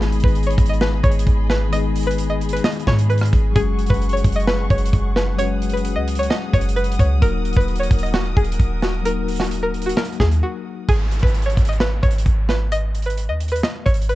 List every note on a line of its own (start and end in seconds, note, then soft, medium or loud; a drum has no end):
0.00 0.22 G#1 loud
0.00 1.69 D#3 medium
0.00 1.71 G#3 medium
0.00 1.73 B3 medium
0.00 1.74 D#4 medium
0.00 0.22 G#4 loud
0.00 1.76 G#4 medium
0.00 7.18 G#4 medium
0.00 3.52 D#5 medium
0.00 3.52 B5 medium
0.00 snare medium
0.12 closed hi-hat medium
0.20 0.57 G#1 loud
0.20 kick loud
0.20 closed hi-hat medium
0.24 0.44 B4 medium
0.24 closed hi-hat medium
0.35 closed hi-hat medium
0.43 0.67 C#5 medium
0.43 closed hi-hat medium
0.50 closed hi-hat medium
0.58 1.02 G#1 loud
0.58 kick loud
0.58 closed hi-hat medium
0.66 0.80 D#5 medium
0.66 closed hi-hat medium
0.73 closed hi-hat soft
0.81 1.02 B4 medium
0.81 snare loud
1.03 1.26 G#1 loud
1.03 1.47 C#5 medium
1.03 kick loud
1.03 closed hi-hat soft
1.12 closed hi-hat medium
1.19 closed hi-hat medium
1.27 2.60 G#1 loud
1.27 kick medium
1.27 closed hi-hat medium
1.50 1.70 B4 medium
1.50 snare medium
1.69 3.50 D#3 medium
1.69 3.51 G#3 medium
1.69 3.52 B3 medium
1.69 2.05 D#5 loud
1.69 closed hi-hat medium
1.74 3.53 D#4 medium
1.74 3.54 G#4 medium
1.95 closed hi-hat soft
1.95 open hi-hat medium
2.03 2.27 B4 medium
2.03 closed hi-hat medium
2.11 closed hi-hat medium
2.18 closed hi-hat medium
2.30 2.50 D#5 medium
2.41 closed hi-hat medium
2.49 closed hi-hat medium
2.53 2.63 B4 medium
2.53 closed hi-hat medium
2.64 2.85 D#5 loud
2.64 snare loud
2.72 closed hi-hat medium
2.79 closed hi-hat medium
2.87 3.31 G#2 loud
2.87 3.08 C#5 medium
2.87 kick medium
2.87 snare medium
2.99 closed hi-hat medium
3.10 3.53 B4 medium
3.10 closed hi-hat soft
3.18 cross-stick loud
3.18 closed hi-hat medium
3.25 closed hi-hat medium
3.33 3.55 G#1 loud
3.33 kick medium
3.33 closed hi-hat medium
3.52 3.89 F#1 loud
3.52 5.33 F#3 medium
3.52 5.34 G#3 medium
3.52 5.35 C#4 medium
3.52 3.88 G#4 loud
3.52 10.85 F#5 medium
3.52 5.37 C#6 medium
3.52 kick loud
3.52 closed hi-hat medium
3.58 5.36 F#4 medium
3.58 5.37 G#4 medium
3.79 closed hi-hat medium
3.86 4.23 F#1 loud
3.86 4.10 B4 medium
3.86 kick loud
3.86 closed hi-hat medium
3.94 closed hi-hat medium
4.02 closed hi-hat medium
4.09 4.33 C#5 medium
4.09 closed hi-hat medium
4.17 closed hi-hat medium
4.24 4.68 F#1 loud
4.24 kick loud
4.24 closed hi-hat medium
4.32 4.46 D#5 medium
4.32 closed hi-hat medium
4.40 closed hi-hat soft
4.47 4.68 B4 medium
4.47 snare loud
4.70 4.92 F#1 loud
4.70 5.13 C#5 medium
4.70 kick loud
4.70 closed hi-hat soft
4.78 closed hi-hat medium
4.86 closed hi-hat medium
4.93 5.98 F#1 loud
4.93 kick medium
4.93 closed hi-hat medium
5.16 5.36 B4 medium
5.16 snare medium
5.35 7.17 F#3 medium
5.35 7.18 G#3 medium
5.35 7.18 C#4 medium
5.35 5.71 C#5 loud
5.35 10.85 D#6 loud
5.35 closed hi-hat medium
5.41 7.19 F#4 medium
5.41 7.20 B4 medium
5.62 closed hi-hat medium
5.70 5.94 B4 medium
5.70 closed hi-hat medium
5.77 closed hi-hat medium
5.85 closed hi-hat medium
5.96 6.29 C#2 loud
5.96 6.16 D#5 medium
6.08 closed hi-hat medium
6.15 6.29 C#5 medium
6.15 closed hi-hat medium
6.23 closed hi-hat medium
6.30 6.51 D#5 loud
6.30 snare loud
6.53 6.97 F#1 loud
6.53 6.74 C#5 loud
6.53 kick loud
6.53 closed hi-hat medium
6.61 closed hi-hat medium
6.69 closed hi-hat medium
6.76 6.97 B4 medium
6.76 closed hi-hat soft
6.84 closed hi-hat medium
6.92 closed hi-hat medium
6.99 7.21 C#2 loud
6.99 7.20 C#5 medium
6.99 kick medium
6.99 closed hi-hat medium
7.18 7.55 D#1 loud
7.18 9.00 F#3 medium
7.18 9.01 A#3 medium
7.18 9.02 D#4 medium
7.18 7.54 A#4 loud
7.18 10.85 A#4 medium
7.18 kick loud
7.18 closed hi-hat medium
7.24 9.03 F#4 medium
7.24 9.04 A#4 medium
7.45 closed hi-hat medium
7.53 7.90 D#1 loud
7.53 kick loud
7.53 closed hi-hat medium
7.57 7.77 B4 medium
7.57 closed hi-hat medium
7.68 closed hi-hat medium
7.76 8.00 C#5 medium
7.76 closed hi-hat medium
7.83 closed hi-hat medium
7.91 8.35 D#1 loud
7.91 kick loud
7.91 closed hi-hat medium
7.99 closed hi-hat medium
8.03 8.13 D#5 medium
8.03 closed hi-hat soft
8.14 8.34 F#4 loud
8.14 snare loud
8.37 8.59 D#1 loud
8.37 8.80 G#4 medium
8.37 kick loud
8.37 closed hi-hat soft
8.44 closed hi-hat medium
8.52 closed hi-hat medium
8.60 9.93 D#1 loud
8.60 kick medium
8.60 closed hi-hat medium
8.82 9.03 F#4 medium
8.82 snare medium
9.02 10.83 F#3 medium
9.02 10.84 A#3 medium
9.02 10.85 D#4 medium
9.02 9.38 A#4 loud
9.02 closed hi-hat medium
9.07 10.86 F#4 medium
9.07 10.87 A#4 medium
9.28 closed hi-hat soft
9.28 open hi-hat medium
9.36 9.60 F#4 medium
9.36 snare medium
9.36 closed hi-hat medium
9.44 closed hi-hat medium
9.51 closed hi-hat medium
9.63 9.83 A#4 medium
9.74 closed hi-hat medium
9.82 closed hi-hat medium
9.86 9.96 F#4 medium
9.86 closed hi-hat medium
9.97 10.17 A#4 loud
9.97 snare loud
10.05 closed hi-hat medium
10.12 closed hi-hat soft
10.20 10.42 D#2 loud
10.20 10.40 G#4 medium
10.20 kick medium
10.20 snare medium
10.31 closed hi-hat medium
10.43 10.86 F#4 medium
10.89 11.22 G#1 loud
10.89 11.21 G#4 loud
10.89 kick loud
10.89 closed hi-hat medium
10.89 downlifter medium
11.12 closed hi-hat medium
11.19 11.56 G#1 loud
11.19 11.43 B4 medium
11.19 kick medium
11.19 closed hi-hat medium
11.27 closed hi-hat medium
11.34 closed hi-hat medium
11.42 11.66 C#5 medium
11.42 closed hi-hat medium
11.50 closed hi-hat medium
11.57 12.01 G#1 loud
11.57 kick loud
11.57 closed hi-hat medium
11.65 11.79 D#5 medium
11.65 closed hi-hat medium
11.73 closed hi-hat soft
11.80 12.01 B4 medium
11.80 snare loud
12.03 12.25 G#1 loud
12.03 12.46 C#5 medium
12.03 kick medium
12.03 closed hi-hat soft
12.11 closed hi-hat medium
12.18 closed hi-hat medium
12.26 13.31 G#1 loud
12.26 kick medium
12.26 closed hi-hat medium
12.49 12.69 B4 medium
12.49 snare medium
12.72 13.04 D#5 loud
12.72 closed hi-hat medium
12.95 closed hi-hat medium
13.02 13.26 B4 medium
13.02 closed hi-hat medium
13.10 closed hi-hat medium
13.18 closed hi-hat medium
13.29 13.62 D#2 loud
13.29 13.49 D#5 medium
13.40 closed hi-hat medium
13.48 13.62 B4 medium
13.48 closed hi-hat medium
13.56 closed hi-hat medium
13.63 13.84 D#5 medium
13.63 snare loud
13.86 14.15 G#1 loud
13.86 14.06 C#5 medium
13.86 kick medium
13.86 cross-stick medium
13.86 closed hi-hat medium
13.94 closed hi-hat medium
14.02 closed hi-hat medium
14.09 14.15 B4 medium
14.09 closed hi-hat soft